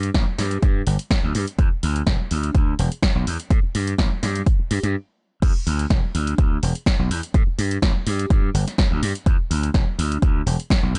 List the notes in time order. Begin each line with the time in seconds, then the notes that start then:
0.03 closed hi-hat
0.14 A1, kick, snare, closed hi-hat
0.38 G2, snare, open hi-hat
0.51 closed hi-hat
0.63 G2, kick, closed hi-hat
0.87 G1, open hi-hat
0.99 closed hi-hat
1.11 kick, snare, closed hi-hat
1.23 D2
1.35 G2, open hi-hat
1.48 closed hi-hat
1.58 E2, kick, closed hi-hat
1.83 D2, open hi-hat
1.96 closed hi-hat
2.07 E1, kick, snare, closed hi-hat
2.31 D2, open hi-hat
2.43 closed hi-hat
2.55 D2, kick, closed hi-hat
2.79 E1, open hi-hat
2.92 closed hi-hat
3.03 kick, snare, closed hi-hat
3.15 B1
3.27 E2, open hi-hat
3.40 closed hi-hat
3.50 A2, kick, closed hi-hat
3.63 muted slap bass stroke
3.75 G2, open hi-hat
3.87 closed hi-hat
3.98 A1, kick, snare, closed hi-hat
4.23 G2, snare, open hi-hat
4.36 closed hi-hat
4.46 kick, closed hi-hat
4.59 muted slap bass stroke
4.71 G2, open hi-hat
4.83 G2, closed hi-hat
5.42 E2, kick, closed hi-hat, crash
5.67 D2, open hi-hat
5.79 closed hi-hat
5.90 E1, kick, snare, closed hi-hat
6.15 D2, open hi-hat
6.27 closed hi-hat
6.38 D2, kick, closed hi-hat
6.63 E1, open hi-hat
6.75 closed hi-hat
6.86 kick, snare, closed hi-hat
6.99 B1
7.10 E2, open hi-hat
7.23 closed hi-hat
7.34 A2, kick, closed hi-hat
7.47 muted slap bass stroke
7.58 G2, open hi-hat
7.71 closed hi-hat
7.82 A1, kick, snare, closed hi-hat
8.07 G2, open hi-hat
8.19 closed hi-hat
8.30 G2, kick, closed hi-hat
8.54 G1, open hi-hat
8.67 snare, closed hi-hat
8.78 kick, snare, closed hi-hat
8.91 D2
9.02 G2, open hi-hat
9.15 closed hi-hat
9.26 E2, kick, closed hi-hat
9.51 D2, open hi-hat
9.63 closed hi-hat
9.74 E1, kick, snare, closed hi-hat
9.99 D2, open hi-hat
10.12 closed hi-hat
10.22 D2, kick, closed hi-hat
10.46 E1, open hi-hat
10.60 closed hi-hat
10.70 kick, snare, closed hi-hat
10.83 B1
10.94 E2, open hi-hat